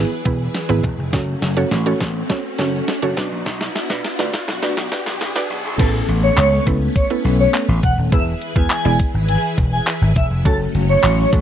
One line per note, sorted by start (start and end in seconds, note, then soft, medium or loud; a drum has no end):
0.00 1.11 E3 medium
0.00 0.10 B3 medium
0.00 0.10 E4 medium
0.00 1.11 E4 medium
0.00 0.10 G#4 medium
0.00 1.11 G#4 medium
0.00 0.11 B4 medium
0.00 1.11 B4 medium
0.00 riser medium
0.25 0.46 E1 medium
0.25 0.46 B3 medium
0.25 0.46 E4 medium
0.25 0.46 G#4 medium
0.25 0.46 B4 medium
0.25 kick medium
0.25 closed hi-hat medium
0.55 snare medium
0.55 closed hi-hat medium
0.69 0.80 G#1 loud
0.69 0.90 B3 medium
0.69 0.90 E4 medium
0.69 0.90 G#4 medium
0.69 0.90 B4 medium
0.84 0.94 E1 medium
0.84 kick medium
0.84 closed hi-hat medium
0.98 1.09 F1 loud
1.13 1.34 F#1 loud
1.13 3.15 A3 medium
1.13 1.34 C#4 medium
1.13 3.15 C#4 medium
1.13 1.34 F#4 medium
1.13 5.75 F#4 medium
1.13 1.34 A4 medium
1.13 1.34 C#5 medium
1.13 kick loud
1.13 snare medium
1.13 closed hi-hat medium
1.42 1.63 F#1 loud
1.42 snare medium
1.42 closed hi-hat medium
1.57 1.71 C#4 medium
1.57 1.71 F#4 medium
1.57 1.71 A4 medium
1.57 1.71 C#5 loud
1.71 1.92 A1 medium
1.71 snare medium
1.71 closed hi-hat medium
1.86 2.07 C#4 medium
1.86 2.07 F#4 medium
1.86 2.07 A4 medium
1.86 2.07 C#5 medium
2.01 2.21 A1 loud
2.01 kick medium
2.01 snare medium
2.01 closed hi-hat medium
2.30 2.43 C#4 medium
2.30 2.43 F#4 medium
2.30 2.44 A4 medium
2.30 2.44 C#5 loud
2.30 kick loud
2.30 snare medium
2.30 closed hi-hat medium
2.58 2.80 F#1 medium
2.58 2.79 C#4 medium
2.58 2.79 F#4 medium
2.58 2.79 A4 medium
2.58 2.80 C#5 medium
2.58 snare medium
2.58 closed hi-hat medium
2.88 snare loud
2.88 closed hi-hat medium
3.02 3.13 F#1 medium
3.02 3.17 C#4 medium
3.02 3.16 F#4 medium
3.02 3.17 A4 medium
3.02 3.17 C#5 medium
3.17 3.28 B1 loud
3.17 5.77 B3 medium
3.17 3.75 D4 medium
3.17 5.77 D4 medium
3.17 3.75 F#4 medium
3.17 3.76 B4 medium
3.17 3.76 D5 loud
3.17 kick medium
3.17 snare loud
3.17 closed hi-hat medium
3.32 3.42 A#1 medium
3.46 3.67 B1 loud
3.46 kick loud
3.46 snare loud
3.46 closed hi-hat medium
3.61 snare loud
3.75 snare loud
3.75 closed hi-hat medium
3.90 4.00 B2 loud
3.90 4.04 D4 medium
3.90 4.04 F#4 medium
3.90 4.04 B4 medium
3.90 4.04 D5 loud
3.90 kick loud
3.90 snare loud
4.04 snare loud
4.04 closed hi-hat medium
4.19 4.30 D2 medium
4.19 4.40 D4 medium
4.19 4.40 F#4 medium
4.19 4.40 B4 medium
4.19 4.40 D5 loud
4.19 snare loud
4.33 kick medium
4.33 snare loud
4.33 closed hi-hat medium
4.48 4.59 B1 loud
4.48 snare loud
4.62 4.73 D2 loud
4.62 4.76 D4 medium
4.62 4.77 F#4 medium
4.62 4.77 B4 medium
4.62 4.77 D5 medium
4.62 snare loud
4.62 closed hi-hat medium
4.77 4.88 B1 medium
4.77 snare loud
4.92 5.13 D4 medium
4.92 5.13 F#4 medium
4.92 5.13 B4 medium
4.92 5.13 D5 loud
4.92 kick loud
4.92 snare loud
4.92 closed hi-hat medium
5.06 5.17 B1 medium
5.06 snare loud
5.21 5.31 A1 loud
5.21 snare loud
5.21 closed hi-hat medium
5.36 5.56 D4 medium
5.36 5.56 F#4 medium
5.36 5.56 B4 medium
5.36 5.56 D5 loud
5.36 snare loud
5.50 5.60 B1 loud
5.50 open hi-hat medium
5.65 5.75 B1 loud
5.79 6.00 A1 loud
5.79 8.10 A3 medium
5.79 8.10 B3 medium
5.79 6.21 B3 medium
5.79 8.10 C#4 medium
5.79 6.21 C#4 medium
5.79 6.21 E4 medium
5.79 5.89 A4 loud
5.79 6.21 A4 medium
5.79 6.21 B4 medium
5.79 kick loud
5.79 closed hi-hat medium
5.79 crash loud
6.09 6.29 A1 loud
6.09 closed hi-hat medium
6.23 6.64 C#5 medium
6.37 6.58 C#2 loud
6.37 clap loud
6.37 closed hi-hat loud
6.67 6.88 C#2 loud
6.67 6.87 B3 medium
6.67 6.87 C#4 medium
6.67 6.87 E4 medium
6.67 6.87 A4 medium
6.67 6.88 B4 medium
6.67 kick medium
6.67 closed hi-hat medium
6.96 7.05 C#5 medium
6.96 kick loud
6.96 closed hi-hat loud
7.10 7.58 B3 medium
7.10 7.58 C#4 medium
7.10 7.58 E4 medium
7.10 7.58 A4 medium
7.10 7.59 B4 medium
7.25 7.46 B1 medium
7.25 closed hi-hat medium
7.40 7.49 C#5 medium
7.54 clap loud
7.54 closed hi-hat loud
7.69 7.79 A1 medium
7.83 7.94 E1 medium
7.83 7.93 F#5 medium
7.83 kick medium
7.83 closed hi-hat medium
7.98 8.08 D#1 medium
8.12 8.33 E1 loud
8.12 10.43 E3 medium
8.12 8.33 G#3 medium
8.12 8.33 B3 medium
8.12 10.43 E4 medium
8.12 8.33 E4 medium
8.12 10.43 G#4 medium
8.12 8.33 G#4 medium
8.12 10.43 B4 medium
8.12 8.33 B4 medium
8.12 8.22 E5 loud
8.12 kick loud
8.12 closed hi-hat medium
8.42 closed hi-hat medium
8.56 8.66 E2 loud
8.56 8.70 G#3 medium
8.56 8.70 B3 medium
8.56 8.70 E4 medium
8.56 8.70 G#4 medium
8.56 8.70 B4 medium
8.56 8.97 G#5 medium
8.56 kick loud
8.70 clap loud
8.70 closed hi-hat loud
8.85 8.95 E1 loud
8.85 9.40 G#3 medium
8.85 9.40 B3 medium
8.85 9.40 E4 medium
8.85 9.40 G#4 medium
8.85 9.40 D5 medium
8.99 kick medium
8.99 closed hi-hat medium
9.14 9.35 G#1 medium
9.29 9.39 G#5 medium
9.29 closed hi-hat loud
9.58 9.79 E1 loud
9.58 kick loud
9.58 closed hi-hat medium
9.73 9.82 G#5 medium
9.87 clap loud
9.87 closed hi-hat loud
10.02 10.12 G#1 loud
10.16 10.27 E1 loud
10.16 10.26 E5 medium
10.16 kick medium
10.16 closed hi-hat medium
10.31 10.41 F1 loud
10.45 10.66 F#1 loud
10.45 11.41 F#3 medium
10.45 11.41 A3 medium
10.45 10.86 A3 medium
10.45 11.41 C#4 medium
10.45 10.87 C#4 medium
10.45 10.87 F#4 medium
10.45 10.55 A4 loud
10.45 10.87 A4 medium
10.45 10.87 C#5 medium
10.45 kick loud
10.45 closed hi-hat medium
10.74 10.95 F#1 loud
10.74 closed hi-hat medium
10.89 11.30 C#5 medium
11.03 11.24 A1 medium
11.03 clap loud
11.03 closed hi-hat loud
11.33 11.41 A1 loud
11.33 11.41 A3 medium
11.33 11.41 C#4 medium
11.33 11.41 F#4 medium
11.33 11.41 A4 medium
11.33 11.41 C#5 medium
11.33 kick medium
11.33 closed hi-hat medium